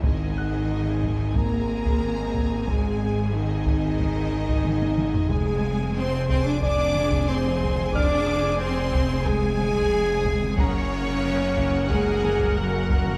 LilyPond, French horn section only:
\new Staff \with { instrumentName = "French horn section" } { \time 4/4 \key gis \minor \tempo 4 = 91 dis'2 ais'2 | gis'4 dis'2. | aes'4 c''8 c''16 d''16 d''4 c''4 | d''4 c''4 aes'2 |
cis'2 gis'4 fis'4 | }